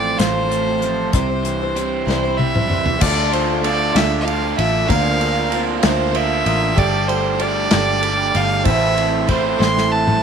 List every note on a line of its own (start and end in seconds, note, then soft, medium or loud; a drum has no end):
0.00 0.15 A1 loud
0.00 0.81 A2 medium
0.00 0.80 F3 medium
0.00 0.18 A3 medium
0.00 0.18 C4 medium
0.00 0.18 F4 medium
0.00 0.18 A4 medium
0.00 1.11 A4 medium
0.00 2.96 C5 medium
0.00 0.20 D5 loud
0.00 1.11 F5 medium
0.00 1.08 C6 medium
0.18 1.09 A1 medium
0.18 0.34 A2 medium
0.18 0.34 F3 medium
0.18 0.34 A3 medium
0.18 0.34 C4 medium
0.18 0.33 F4 medium
0.18 0.32 A4 medium
0.18 1.13 C5 loud
0.18 snare loud
0.18 closed hi-hat medium
0.33 0.67 A3 soft
0.33 0.66 C4 medium
0.33 0.66 F4 medium
0.33 0.64 A4 medium
0.48 1.12 A3 medium
0.48 closed hi-hat medium
0.66 0.80 A3 soft
0.66 0.81 C4 soft
0.66 0.82 F4 soft
0.66 0.81 A4 soft
0.81 1.12 F3 medium
0.81 1.13 A3 soft
0.81 1.13 C4 medium
0.81 1.14 F4 medium
0.81 closed hi-hat medium
0.85 1.14 A4 medium
1.12 2.03 C2 loud
1.12 1.29 C3 medium
1.12 1.29 E3 medium
1.12 1.29 G3 medium
1.12 1.29 C4 medium
1.12 1.29 E4 medium
1.12 2.99 G4 medium
1.12 2.03 C5 medium
1.12 1.28 C5 medium
1.12 2.99 E5 medium
1.12 2.99 C6 medium
1.12 kick loud
1.12 closed hi-hat medium
1.30 1.62 G3 soft
1.30 1.61 C4 soft
1.30 1.61 E4 soft
1.30 1.60 C5 soft
1.43 2.65 E3 medium
1.43 closed hi-hat soft
1.61 1.75 G3 soft
1.61 1.76 C4 soft
1.61 1.77 E4 medium
1.61 1.76 C5 medium
1.76 2.07 G3 medium
1.76 2.07 C4 medium
1.76 2.08 E4 medium
1.76 2.09 C5 medium
1.76 closed hi-hat medium
2.07 2.97 C2 medium
2.07 2.23 C3 medium
2.07 2.23 E3 medium
2.07 2.23 G3 medium
2.07 2.23 C4 medium
2.07 2.23 E4 medium
2.07 2.39 C5 medium
2.07 2.22 C5 medium
2.07 snare medium
2.23 2.56 G3 soft
2.23 2.55 C4 medium
2.23 2.55 E4 medium
2.23 2.53 C5 medium
2.37 2.98 G3 medium
2.37 3.02 E5 medium
2.37 high tom medium
2.55 2.68 G3 soft
2.55 2.69 C4 soft
2.55 2.70 E4 medium
2.55 2.70 C5 medium
2.55 mid tom medium
2.67 2.97 E3 medium
2.67 3.01 G3 medium
2.67 3.01 C4 medium
2.67 mid tom medium
2.71 3.01 E4 medium
2.71 3.02 C5 medium
2.86 floor tom medium
3.01 3.91 D2 loud
3.01 3.97 D3 medium
3.01 3.61 A3 medium
3.01 3.64 D4 medium
3.01 3.60 F4 medium
3.01 4.87 F4 medium
3.01 3.65 F4 medium
3.01 3.60 A4 medium
3.01 4.88 A4 medium
3.01 3.64 A4 medium
3.01 3.35 D5 medium
3.01 3.60 D5 medium
3.01 8.63 D5 medium
3.01 4.88 D6 medium
3.01 kick loud
3.01 crash loud
3.30 3.60 A3 medium
3.30 3.63 D4 medium
3.30 3.64 F4 medium
3.30 3.64 C5 medium
3.30 ride medium
3.61 3.95 D3 medium
3.61 3.94 A3 medium
3.61 3.95 D4 medium
3.61 3.97 D5 medium
3.61 ride medium
3.65 3.95 F4 medium
3.65 3.94 A4 medium
3.95 4.54 D2 medium
3.95 4.59 D3 medium
3.95 4.58 A3 medium
3.95 4.60 D4 medium
3.95 4.54 F4 medium
3.95 4.58 F4 medium
3.95 4.56 A4 medium
3.95 4.54 A4 medium
3.95 4.54 D5 medium
3.95 4.19 E5 medium
3.95 snare loud
3.95 ride loud
4.19 4.27 E5 medium
4.23 4.85 D3 medium
4.23 4.86 A3 medium
4.23 4.88 D4 medium
4.23 4.87 F4 medium
4.23 4.57 F5 medium
4.28 ride medium
4.57 4.87 A1 loud
4.57 4.89 D4 soft
4.57 4.89 F4 soft
4.57 4.89 A4 medium
4.57 4.90 E5 medium
4.57 ride medium
4.87 5.79 D2 loud
4.87 5.51 D3 medium
4.87 5.52 A#3 medium
4.87 5.52 C4 medium
4.87 5.19 D4 loud
4.87 6.75 F4 medium
4.87 5.52 F4 medium
4.87 5.48 A#4 medium
4.87 5.52 A#4 medium
4.87 5.48 C5 medium
4.87 5.48 D5 medium
4.87 5.59 F5 loud
4.87 6.75 C6 medium
4.87 kick loud
4.87 ride loud
5.17 5.48 A#3 medium
5.17 5.50 D4 medium
5.17 5.50 F4 medium
5.17 ride medium
5.48 5.81 D3 medium
5.48 5.80 D4 medium
5.52 5.84 A#3 medium
5.52 5.83 C4 medium
5.52 5.83 F4 medium
5.52 ride medium
5.56 5.82 A#4 medium
5.80 6.12 D4 loud
5.80 6.13 F4 loud
5.80 6.41 A#4 medium
5.80 6.45 A#4 medium
5.80 6.41 C5 medium
5.80 6.18 C5 medium
5.80 6.42 E5 medium
5.80 snare loud
5.80 ride medium
5.84 6.42 D2 medium
5.84 6.47 D3 medium
5.84 6.47 A#3 medium
5.84 6.46 C4 medium
5.84 6.46 F4 medium
6.11 6.73 D3 medium
6.11 6.74 A#3 medium
6.11 6.75 D4 medium
6.11 6.75 F4 medium
6.11 ride medium
6.16 6.80 E5 loud
6.46 6.75 A1 medium
6.46 6.77 C4 soft
6.46 6.78 F4 soft
6.46 6.78 A#4 medium
6.46 ride medium
6.75 7.67 G1 loud
6.75 7.38 G3 medium
6.75 7.10 A3 loud
6.75 7.39 D4 medium
6.75 7.35 G4 medium
6.75 7.40 G4 medium
6.75 7.35 A4 medium
6.75 10.23 A4 medium
6.75 7.42 A4 medium
6.75 7.35 D5 medium
6.75 7.10 D5 loud
6.75 8.64 G5 medium
6.75 8.64 D6 medium
6.75 kick loud
6.75 ride loud
7.07 7.39 A3 medium
7.07 7.40 D4 medium
7.07 7.40 G4 medium
7.07 7.43 C5 medium
7.07 ride medium
7.40 7.71 G3 medium
7.40 7.72 A3 medium
7.40 7.72 D4 medium
7.40 7.71 G4 medium
7.40 7.70 A4 medium
7.40 8.38 D5 loud
7.40 ride medium
7.69 8.31 G1 medium
7.69 8.01 A3 medium
7.69 8.35 D4 medium
7.69 8.29 G4 medium
7.69 8.35 G4 medium
7.69 8.29 A4 medium
7.69 8.34 A4 medium
7.69 8.29 D5 medium
7.69 snare loud
7.69 ride medium
7.73 8.35 G3 medium
8.01 8.63 G3 medium
8.01 8.65 A3 medium
8.01 8.64 D4 medium
8.01 8.64 G4 medium
8.01 ride medium
8.34 8.64 G1 medium
8.34 8.66 D4 soft
8.34 8.66 G4 medium
8.34 8.66 A4 medium
8.34 8.65 F5 loud
8.34 ride medium
8.64 9.56 A1 loud
8.64 9.28 A2 medium
8.64 9.28 E3 medium
8.64 9.27 A3 medium
8.64 9.27 C4 medium
8.64 9.24 E4 medium
8.64 9.28 E4 medium
8.64 9.24 A4 medium
8.64 9.29 A4 medium
8.64 9.23 C5 medium
8.64 10.23 C5 medium
8.64 9.25 E5 loud
8.64 10.23 E5 medium
8.64 10.23 C6 medium
8.64 kick loud
8.64 ride loud
8.95 9.26 A3 medium
8.95 9.26 C4 medium
8.95 9.27 E4 medium
8.95 ride medium
9.25 9.58 E3 medium
9.25 9.59 A3 medium
9.25 9.59 C4 medium
9.25 kick medium
9.25 ride medium
9.29 9.58 E4 medium
9.29 9.57 A4 medium
9.29 9.62 C5 medium
9.59 10.19 A1 medium
9.59 10.23 A2 medium
9.59 10.23 E3 medium
9.59 10.22 A3 medium
9.59 10.22 C4 medium
9.59 10.21 E4 medium
9.59 10.18 E4 medium
9.59 10.20 A4 medium
9.59 10.18 A4 medium
9.59 10.18 C5 medium
9.59 9.93 C6 loud
9.59 snare medium
9.78 snare medium
9.88 10.23 E3 medium
9.88 10.23 A3 medium
9.88 10.23 C4 medium
9.88 10.23 E4 medium
9.88 10.23 A5 loud
10.07 mid tom medium